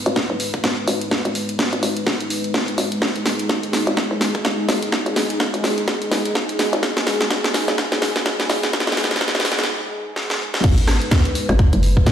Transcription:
Already playing: G#3 D#4 B4
0.06 G#1, closed hi-hat
0.16 kick, snare, closed hi-hat
0.30 F#1
0.40 open hi-hat
0.54 kick, closed hi-hat
0.64 G#1, kick, snare, closed hi-hat
0.88 G#1, open hi-hat
1.01 closed hi-hat
1.11 kick, snare, closed hi-hat
1.25 G#1, closed hi-hat
1.35 open hi-hat
1.49 closed hi-hat
1.59 kick, snare, closed hi-hat
1.73 G#1, closed hi-hat
1.83 G#1, open hi-hat
1.97 closed hi-hat
2.07 kick, snare, closed hi-hat
2.20 closed hi-hat
2.30 open hi-hat
2.44 closed hi-hat
2.54 G#1, kick, snare, closed hi-hat
2.68 closed hi-hat
2.78 G#1, open hi-hat
2.92 closed hi-hat
3.02 G#1 G#4, kick, snare, closed hi-hat
3.16 closed hi-hat
3.26 snare, open hi-hat
3.39 closed hi-hat
3.49 kick, snare, closed hi-hat
3.63 closed hi-hat
3.73 snare, open hi-hat
3.87 G#1, closed hi-hat
3.97 kick, snare, closed hi-hat
4.11 F#1
4.21 snare, open hi-hat
4.35 kick, closed hi-hat
4.45 G#1, kick, snare, closed hi-hat
4.69 G#1, snare, open hi-hat
4.82 closed hi-hat
4.92 kick, snare, closed hi-hat
5.06 G#1, closed hi-hat
5.16 snare, open hi-hat
5.30 closed hi-hat
5.40 kick, snare, closed hi-hat
5.54 G#1, closed hi-hat
5.64 G#1, snare, open hi-hat
5.78 closed hi-hat
5.88 kick, snare, closed hi-hat
6.02 closed hi-hat
6.11 F#1, snare, open hi-hat
6.25 closed hi-hat
6.35 kick, snare, closed hi-hat
6.49 closed hi-hat
6.59 snare, open hi-hat
6.73 G#1, closed hi-hat
6.83 G#1, kick, snare, closed hi-hat
6.97 snare, closed hi-hat
7.07 snare, open hi-hat
7.21 snare, closed hi-hat
7.31 kick, snare, closed hi-hat
7.44 snare, closed hi-hat
7.54 snare, open hi-hat
7.68 G#1, snare, closed hi-hat
7.78 kick, snare, closed hi-hat
7.92 F#1, snare
8.02 snare, open hi-hat
8.16 kick, snare, closed hi-hat
8.26 G#1, kick, snare, closed hi-hat
8.40 snare
8.50 G#1, snare, open hi-hat
8.63 snare, closed hi-hat
8.73 kick, snare, closed hi-hat
8.80 snare
8.87 G#1, snare, closed hi-hat
8.92 snare
8.97 snare, open hi-hat
9.04 snare
9.11 snare, closed hi-hat
9.16 snare
9.21 kick, snare, closed hi-hat
9.28 snare
9.35 G#1, snare, closed hi-hat
9.40 snare
9.45 snare, open hi-hat
9.52 snare
9.59 snare, closed hi-hat
9.64 snare
10.16 snare
10.30 snare
10.54 snare
10.64 G#1 G#3 D#4 B4, kick, closed hi-hat, crash
10.78 closed hi-hat
10.87 cross-stick, snare, open hi-hat
11.02 closed hi-hat
11.11 kick, snare, closed hi-hat
11.25 closed hi-hat
11.35 open hi-hat
11.49 G#1, cross-stick, closed hi-hat
11.59 kick, closed hi-hat
11.73 F#1, closed hi-hat
11.83 open hi-hat
11.97 kick
12.06 G#1, kick, snare, closed hi-hat

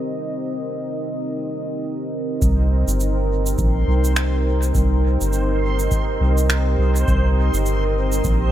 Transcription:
Already playing: C4 D#4 G4 A#4 D#5
2.42 C2 C4 C5, kick, shaker
2.50 D#4
2.77 G4
2.88 G1, shaker
3.00 shaker
3.26 D#5
3.46 shaker
3.58 A#1, kick, shaker
3.88 C2
4.04 shaker
4.16 finger snap, shaker
4.62 shaker
4.75 C2, kick, shaker
5.21 G1, shaker
5.33 shaker
5.79 shaker
5.91 kick, shaker
6.21 C2
6.38 shaker
6.50 finger snap, shaker
6.79 C2
6.96 shaker
7.08 C2, kick, shaker
7.54 G1, shaker
7.66 shaker
8.12 shaker
8.24 A#1, kick, shaker

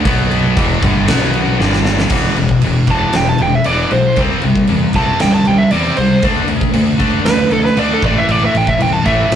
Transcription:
0.05 B1 B2 F#3 B3, kick, crash
0.31 crash
0.56 E1 E2 B2 E3, kick, crash
0.82 G1 G2 D3 G3, kick, crash
1.07 B1 B2 F#3 B3, snare, crash
1.34 crash
1.60 G1 G2 D3 G3, snare
1.73 snare
1.85 snare
1.99 snare
2.10 E1 E2 B2 E3, kick, crash
2.36 E1 E2 B2, crash
2.49 kick
2.61 E1 E2 B2, crash
2.87 E1 E2 B2 E3, kick, crash
2.91 A5
3.13 E1 E2 B2, snare, crash
3.17 G5
3.29 A5
3.38 E1 E2 B2, crash
3.42 G5
3.55 E5
3.64 E1 E2 B2 E3 D5, crash
3.91 B1 E2 B2 C5, crash
4.16 C2 C3 G3 C4, kick, crash
4.41 C2 C3 G3, crash
4.55 kick
4.67 E2 C3 G3, crash
4.93 C2 C3 G3 A5, kick, crash
4.97 C4
5.19 C2 C3 G3 G5, snare, crash
5.34 A5
5.45 C2 C3 G3 G5, crash
5.58 E5
5.71 E2 C3 G3 D5, crash
5.75 C4
5.97 C#2 C3 G3 C5, crash
6.22 D2 D3 A3 D4, kick, crash
6.47 D2 D3 A3, crash
6.61 kick
6.73 D2 D3 A3, crash
6.98 D2 D3 A3 D4, kick, crash
7.23 D2 D3 A3 B4, snare, crash
7.49 D2 D3 A3 A4, crash
7.65 B4, snare
7.77 D2 D3 A3 D4 D5, crash
7.94 A4
8.02 A1 A2 E3 A3 D5, kick, crash
8.18 E5
8.27 A1 A2 E3 A3 D5, crash
8.45 E5
8.55 A1 A2 E3 G5, crash
8.67 E5, kick
8.79 C2 A2 E3 G5, crash
8.93 A5
9.05 A1 A2 E3 A3 E5, kick, crash
9.29 A1 A2 E3, crash

